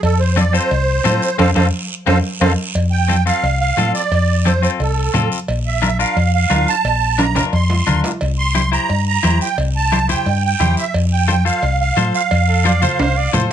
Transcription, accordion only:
0.03 0.20 A4 loud
0.20 0.37 C5 medium
0.38 0.54 D5 medium
0.54 1.37 C5 medium
1.39 1.50 A4 loud
1.39 1.50 C5 loud
1.39 1.50 F5 loud
1.56 1.67 A4 medium
1.56 1.67 C5 medium
1.56 1.67 F5 medium
2.07 2.18 A4 loud
2.07 2.18 C5 loud
2.07 2.18 F5 medium
2.41 2.52 A4 loud
2.41 2.52 C5 loud
2.41 2.52 F5 loud
2.92 3.24 G5 loud
3.26 3.59 F5 loud
3.60 3.92 F5 loud
3.95 4.48 D5 medium
4.46 4.62 C5 medium
4.64 4.71 C5 medium
4.81 5.28 A4 medium
5.66 5.98 E5 medium
6.01 6.32 F5 medium
6.34 6.69 F5 loud
6.69 7.21 A5 loud
7.20 7.35 A#5 loud
7.37 7.45 A#5 medium
7.54 8.01 C6 medium
8.39 8.70 C6 loud
8.73 9.05 A#5 loud
9.08 9.39 A#5 loud
9.42 9.57 G5 loud
9.77 10.08 A5 loud
10.10 10.43 G5 medium
10.45 10.76 G5 loud
10.79 10.94 E5 medium
11.13 11.44 G5 medium
11.47 11.79 F5 medium
11.81 12.13 F5 medium
12.15 13.30 F5 medium

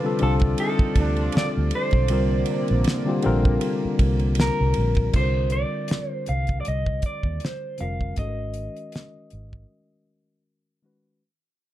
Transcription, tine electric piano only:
0.00 0.02 D3 medium
0.00 0.18 D3 medium
0.00 0.03 G3 medium
0.00 0.19 G3 medium
0.00 0.04 C4 medium
0.00 0.05 F4 medium
0.00 0.06 A4 medium
0.04 0.19 C4 medium
0.04 0.20 F4 medium
0.04 0.20 A4 medium
0.20 1.61 G3 medium
0.20 1.62 C4 medium
0.20 1.61 D4 medium
0.20 1.62 F4 medium
0.20 1.63 A4 medium
2.08 2.98 D3 medium
2.08 2.98 G3 medium
2.08 2.99 C4 medium
2.08 2.99 F4 medium
2.13 3.00 A#4 medium
3.05 3.21 D3 medium
3.05 3.22 G3 medium
3.05 3.22 C4 medium
3.05 3.23 F4 medium
3.05 3.24 G4 medium
3.23 4.64 D3 medium
3.23 4.64 G3 medium
3.23 4.65 C4 medium
3.23 4.66 F4 medium
3.23 4.66 A#4 loud
5.13 6.54 D3 medium
5.13 6.55 G3 medium
5.13 6.55 C4 soft
5.13 6.56 F4 medium
5.17 5.23 A4 medium
5.23 6.59 A#4 medium
7.78 8.14 D3 medium
7.78 8.14 G3 medium
7.78 8.15 C4 medium
7.78 8.16 F4 medium
7.82 8.16 A#4 medium
8.17 9.58 D#3 medium
8.17 9.58 G#3 medium
8.17 9.59 C#4 medium
8.17 9.59 F#4 medium
8.17 8.26 A4 medium
8.27 9.63 A#4 medium
10.82 11.18 D#3 medium
10.82 11.18 G#3 medium
10.82 11.19 C#4 medium
10.82 11.19 F#4 medium
10.82 11.20 B4 medium

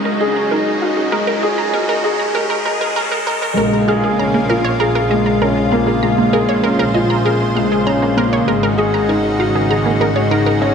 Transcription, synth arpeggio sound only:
0.05 0.09 A#4 medium
0.20 0.27 D#5 medium
0.36 0.42 A#5 medium
0.51 0.60 A#4 medium
0.82 0.88 F5 medium
0.97 1.03 G#4 medium
1.12 1.21 A#4 loud
1.27 1.31 A#4 loud
1.43 1.49 D#5 medium
1.58 1.64 A#5 medium
1.73 1.83 A#4 loud
1.89 1.93 A#4 loud
2.04 2.10 D#5 medium
2.19 2.26 A#5 medium
2.35 2.44 A#4 loud
2.50 2.54 A#4 loud
2.66 2.75 A#4 loud
2.81 2.85 A#4 loud
2.96 3.05 A#4 loud
3.12 3.15 A#4 loud
3.27 3.36 A#4 loud
3.42 3.46 A#4 loud
3.57 3.67 A#4 medium
3.88 3.94 F5 medium
4.04 4.10 G#4 medium
4.19 4.23 A#5 medium
4.34 4.40 A#3 medium
4.50 4.56 A#4 loud
4.64 4.71 C#5 loud
4.80 4.89 A#4 loud
4.95 4.99 A#4 loud
5.11 5.17 D#5 medium
5.26 5.32 A#5 medium
5.42 5.51 A#4 medium
5.72 5.78 F5 medium
5.87 5.93 G#4 medium
6.03 6.06 A#5 medium
6.18 6.24 A#3 medium
6.33 6.39 A#4 loud
6.49 6.55 C#5 loud
6.64 6.73 A#4 loud
6.79 6.83 A#4 loud
6.94 7.00 D#5 medium
7.10 7.16 A#5 medium
7.26 7.34 A#4 medium
7.56 7.62 F5 medium
7.72 7.77 G#4 medium
7.87 7.90 A#5 medium
8.02 8.08 A#3 medium
8.18 8.23 A#4 loud
8.33 8.39 C#5 loud
8.48 8.57 A#4 medium
8.63 8.67 A#4 loud
8.79 8.84 D#5 medium
8.94 9.00 A#5 medium
9.09 9.18 A#4 medium
9.40 9.46 F5 medium
9.55 9.61 G#4 medium
9.71 9.74 A#5 medium
9.86 9.91 A#3 medium
10.01 10.07 A#4 loud
10.16 10.22 C#5 loud
10.31 10.40 A#4 loud
10.46 10.50 A#4 loud
10.62 10.68 D#5 medium

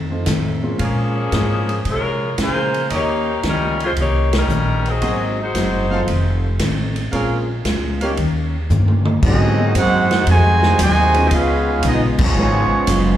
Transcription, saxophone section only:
0.81 1.82 F3 medium
0.81 1.82 A#3 medium
0.81 1.82 C#4 medium
0.81 1.82 G#4 medium
1.88 2.36 G#3 medium
1.88 2.36 F4 medium
1.88 2.36 A#4 medium
1.88 2.36 C#5 medium
2.41 2.89 A#3 medium
2.41 2.89 F4 medium
2.41 2.89 G#4 medium
2.41 2.89 C5 medium
2.94 3.42 A#3 medium
2.94 3.42 D#4 medium
2.94 3.42 G4 medium
2.94 3.42 C#5 loud
3.48 3.82 G3 medium
3.48 3.82 C#4 medium
3.48 3.82 D#4 medium
3.48 3.82 A#4 medium
3.83 3.90 G#3 medium
3.83 3.90 C#4 medium
3.83 3.90 F4 medium
3.83 3.90 C5 medium
4.00 4.32 A#3 medium
4.00 4.32 D#4 medium
4.00 4.32 G4 medium
4.00 4.32 C#5 medium
4.37 4.88 G3 medium
4.37 4.88 C#4 medium
4.37 4.87 D#4 medium
4.37 4.87 A#4 medium
4.89 5.40 F#3 medium
4.89 5.40 C4 medium
4.89 5.40 D#4 medium
4.89 5.40 G#4 medium
5.41 6.05 G#3 medium
5.41 6.41 D#4 medium
5.41 6.05 F#4 medium
5.41 6.41 C5 medium

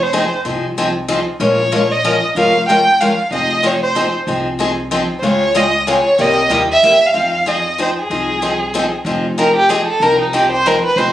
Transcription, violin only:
0.02 0.33 C5 medium
1.44 1.93 C#5 medium
1.92 2.23 D#5 medium
2.37 2.66 F5 medium
2.69 3.02 G5 medium
3.01 3.32 F5 medium
3.34 3.68 D#5 medium
3.66 3.82 C#5 medium
3.83 4.12 C5 medium
5.19 5.25 C5 medium
5.24 5.58 C#5 medium
5.57 5.88 D#5 medium
5.91 6.23 C#5 medium
6.21 6.52 D#5 medium
6.73 7.08 E5 loud
7.06 7.50 F5 medium
7.48 7.79 D#5 medium
7.82 7.89 C5 medium
8.00 8.90 G#4 medium
9.39 9.55 A#4 medium
9.56 9.71 G4 medium
9.69 9.87 G#4 medium
9.88 10.04 A4 medium
10.02 10.20 A#4 medium
10.21 10.35 D#4 soft
10.34 10.51 G4 medium
10.52 10.69 C5 medium
10.67 10.84 A#4 medium
10.85 10.98 B4 medium
10.97 11.13 C5 medium

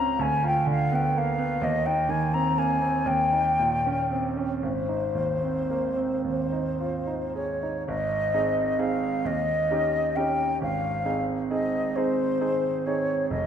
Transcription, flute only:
0.00 0.22 A#5 medium
0.21 0.44 G#5 medium
0.46 0.68 G5 medium
0.69 0.96 F5 medium
0.94 1.19 G5 medium
1.17 1.64 F5 medium
1.63 1.87 D#5 medium
1.85 2.11 G5 medium
2.09 2.35 G#5 medium
2.33 2.59 A#5 medium
2.58 3.08 G#5 medium
3.06 4.31 G5 medium
4.63 6.21 C5 soft
6.26 7.38 C5 soft
7.36 7.86 C#5 soft
7.87 8.80 D#5 medium
8.78 9.27 F5 medium
9.26 10.17 D#5 medium
10.15 10.61 G5 medium
10.62 11.24 F5 medium
11.50 11.97 D#5 medium
11.95 12.87 C5 medium
12.86 13.29 C#5 medium
13.30 13.46 D#5 medium

